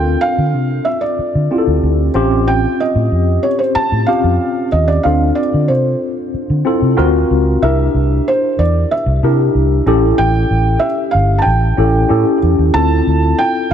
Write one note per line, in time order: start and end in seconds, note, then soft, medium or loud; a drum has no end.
0.00 0.15 D2 medium
0.00 0.91 C4 medium
0.00 0.91 D4 medium
0.00 0.91 F4 medium
0.00 0.91 A4 medium
0.00 0.22 G5 medium
0.21 0.88 F5 loud
0.38 0.54 D3 medium
0.54 0.79 C3 medium
0.85 1.02 E5 medium
1.01 2.10 D5 medium
1.19 muted fingered electric bass stroke soft
1.35 1.47 D3 medium
1.51 2.13 C4 medium
1.51 2.15 E4 medium
1.51 2.14 F4 medium
1.51 1.58 G4 medium
1.58 2.19 A4 medium
1.67 1.80 D2 medium
1.83 2.08 D2 medium
2.14 2.65 A1 loud
2.14 3.18 C4 medium
2.14 3.18 C#4 medium
2.14 3.18 F4 medium
2.14 3.19 G4 medium
2.48 2.81 G5 medium
2.80 3.46 D#5 medium
2.95 3.08 A2 loud
3.12 3.37 F2 medium
3.43 3.58 C#5 medium
3.59 3.76 C5 medium
3.75 4.09 A5 loud
3.75 muted fingered electric bass stroke soft
3.92 4.05 A2 medium
4.06 4.84 C4 medium
4.06 4.84 C#4 medium
4.06 4.84 F4 medium
4.06 4.84 G4 medium
4.06 4.68 F5 medium
4.24 4.36 F2 medium
4.72 4.98 D#2 medium
4.72 4.89 D#5 medium
4.88 5.03 D5 medium
5.03 5.30 D2 loud
5.03 6.06 C4 medium
5.03 6.06 D4 medium
5.03 6.06 F4 medium
5.03 6.07 A4 medium
5.03 5.37 F5 medium
5.35 5.69 D5 medium
5.54 5.70 D3 medium
5.68 5.94 C3 medium
5.68 6.93 C5 medium
6.34 muted fingered electric bass stroke soft
6.50 6.62 D3 medium
6.65 6.96 C4 medium
6.65 6.97 E4 medium
6.65 6.96 F4 medium
6.65 6.98 A4 medium
6.82 6.94 C3 medium
6.97 7.23 D2 medium
6.97 7.49 C4 medium
6.97 7.49 F4 medium
6.97 7.49 F#4 medium
6.97 7.49 A#4 medium
7.30 7.55 C#2 medium
7.62 7.87 C2 medium
7.62 8.64 D4 medium
7.62 8.64 E4 medium
7.62 8.64 G4 medium
7.62 8.64 A#4 medium
7.62 8.28 E5 medium
7.94 8.19 C2 medium
8.28 8.60 C5 medium
8.58 8.83 E2 medium
8.58 8.92 D5 medium
8.91 9.83 E5 medium
9.06 9.19 C2 loud
9.23 9.48 C3 loud
9.23 9.87 D4 medium
9.23 9.86 E4 medium
9.23 9.86 G4 medium
9.23 9.88 A#4 medium
9.55 9.80 C2 medium
9.86 10.11 A1 medium
9.86 10.89 C#4 medium
9.86 10.90 E4 medium
9.86 10.90 G4 medium
9.86 10.90 A4 loud
10.18 10.44 A1 medium
10.18 10.85 G5 medium
10.50 10.76 A1 medium
10.79 11.14 E5 medium
11.11 11.40 G1 medium
11.11 11.36 F5 medium
11.38 12.37 G5 medium
11.38 11.46 A5 medium
11.46 11.71 A1 medium
11.77 12.03 A1 medium
11.77 12.08 C#4 medium
11.77 12.08 E4 medium
11.77 12.09 G4 medium
11.77 12.10 A4 medium
12.09 12.23 A2 medium
12.09 12.61 C#4 medium
12.09 12.62 E4 medium
12.09 12.62 G4 medium
12.09 12.62 A4 medium
12.43 12.55 E2 medium
12.59 12.71 D#2 medium
12.74 13.00 D2 loud
12.74 13.74 C4 medium
12.74 13.74 E4 medium
12.74 13.74 F4 medium
12.74 13.74 A4 medium
12.74 13.41 A5 loud
13.07 13.32 D2 medium
13.38 13.69 G5 loud
13.71 13.74 F5 medium